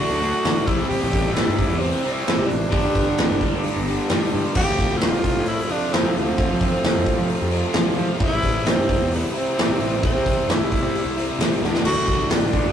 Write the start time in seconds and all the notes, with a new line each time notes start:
Already playing: D3 F#3 A3 D4 A4
0.00 D3 F#3 A3 D4 F#4
0.10 D2
0.20 D3 F#3 A3 D4 F#4, open hi-hat
0.44 D3 F#3 A3 D4, snare, open hi-hat
0.66 C2 C3 E3 G3 C4 E4 C5, kick, open hi-hat
0.70 G4
0.88 C2 C3 G3 G4, open hi-hat
0.92 C4 E4
1.02 A1
1.13 G3 C4 E4, kick, open hi-hat
1.33 C3 G3 E4, snare, open hi-hat
1.38 C4 E4
1.47 G2
1.58 kick, open hi-hat
1.70 E2
1.79 C3 E3 G3 C4 E4, open hi-hat
1.83 G4
2.03 C3 E3 G3 C4 E4 G4, open hi-hat
2.12 E4
2.25 C3 G3 C4 E4, snare, open hi-hat
2.38 C3
2.47 A1 C4 D4 E4, open hi-hat
2.51 G3
2.71 G1 G2 D3 G3 B3 D4 G4 B4, kick, open hi-hat
2.84 G2
2.94 G3 B3 D4, kick, open hi-hat
3.16 D2 D3 G3 B3 D4, snare, open hi-hat
3.30 G1
3.40 G2 D3 G3, kick, open hi-hat
3.53 G2
3.63 G2 D3 G3 B3 D4, open hi-hat
3.76 G1
3.87 G2 D3 G3 B3 D4 G4, open hi-hat
4.09 G2 D3 G3 B3 D4 G4, snare, open hi-hat
4.31 G2 G3 B3 D4, open hi-hat
4.55 F2 C3 F3 A3 C4 F4 G4 C5, kick, crash
4.66 D2
4.78 A3 C4 F4, kick, open hi-hat
4.97 F3 E4, open hi-hat
5.02 A3 C4 F4, snare
5.12 C2
5.24 kick, open hi-hat
5.36 A2
5.46 F3 A3 C4 E4 F4, open hi-hat
5.69 F2 C3 F3 C4 D4 F4, open hi-hat
5.73 A3
5.91 F2 C3 F3 A3 C4, snare, open hi-hat
5.97 F4
6.03 F3
6.15 D2 A3 C4 F4, open hi-hat
6.37 F2 C3 F3 A3 C4, kick, open hi-hat
6.42 F4
6.51 F3
6.60 A3 C4 F4, kick, open hi-hat
6.84 C2 F3 A3 C4, snare, open hi-hat
6.88 F4
6.95 F2
7.06 kick, open hi-hat
7.18 F3
7.28 F3 A3 C4, open hi-hat
7.33 F4
7.42 F2
7.51 F2 C3 F3 C4 F4, open hi-hat
7.56 A3
7.73 F2 C3 F3 A3, snare, open hi-hat
7.78 C4 F4
7.97 F3 C4 F4, open hi-hat
8.02 A3
8.19 C2 C3 E3 G3 C4 E4 C5, kick, open hi-hat
8.23 G3 C4 E4
8.32 A1
8.42 C4 E4, kick, open hi-hat
8.46 G3
8.66 C3 G3 C4 E4, snare, open hi-hat
8.77 G2
8.89 kick, open hi-hat
9.00 E2
9.11 C3 G3 C4 E4, open hi-hat
9.15 B3
9.35 C3 E3 G3 C4 E4, open hi-hat
9.57 C3 E3 G3 C4, snare, open hi-hat
9.61 E4
9.69 C3
9.79 A1 C4 E4, open hi-hat
9.84 G3
10.03 C3 E3 G3 C4 E4, kick, open hi-hat
10.14 C3
10.26 G3 C4 E4, kick, open hi-hat
10.48 G2 G3 C4, snare, open hi-hat
10.52 E4
10.59 C2
10.72 kick, open hi-hat
10.82 C3
10.95 C3 G3 C4 E4, open hi-hat
11.05 C2
11.17 C3 E3 G3 C4 E4, open hi-hat
11.38 C3 E3 G3 C4, snare, open hi-hat
11.43 E4
11.62 D2 D3 F#3 A3 D4 F#4 D5, snare
11.75 snare
11.84 D2 D3 F#3 A3 D4 F#4, crash
11.95 C2
12.07 A3 D4, kick, open hi-hat
12.12 F#3
12.30 D3 F#3 D4, snare, open hi-hat
12.34 A3 D4
12.41 A1
12.51 D3 A3 D4, kick, open hi-hat
12.64 F#2